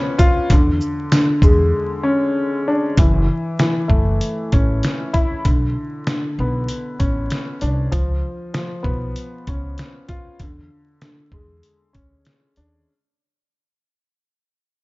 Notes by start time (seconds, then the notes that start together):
Already playing: F3 B3 C#4
0.18 F4, kick, closed hi-hat, shaker
0.50 E2 D3, kick, closed hi-hat
0.81 shaker
1.12 D3, snare, closed hi-hat, tambourine
1.42 E2 G#3, kick, shaker
2.03 C#4
2.68 D4
2.97 F#1 E3, kick, closed hi-hat
3.59 E3, snare, closed hi-hat
3.88 F#1 A3, kick
4.21 closed hi-hat
4.52 A1 C#4, kick, closed hi-hat
4.83 snare, closed hi-hat
5.13 E4, kick, closed hi-hat
5.45 B1 D3, kick, closed hi-hat
6.07 D3, snare, closed hi-hat
6.39 B1 B3
6.68 closed hi-hat
6.99 A1 C#4, kick, closed hi-hat
7.30 snare, closed hi-hat
7.61 C2 D4, closed hi-hat
7.92 C#2 F3, kick, closed hi-hat
8.54 F3, snare, closed hi-hat
8.83 B1 B3, kick
9.16 closed hi-hat
9.47 C#2 C#4, kick, closed hi-hat
9.78 snare, closed hi-hat
10.08 F4, kick, closed hi-hat
10.39 E2 D3, kick, closed hi-hat
11.02 D3, snare, closed hi-hat
11.32 E2 G#3, kick
11.63 closed hi-hat
11.93 D2 C#4, kick, closed hi-hat
12.25 snare, closed hi-hat
12.56 D#2 D4, closed hi-hat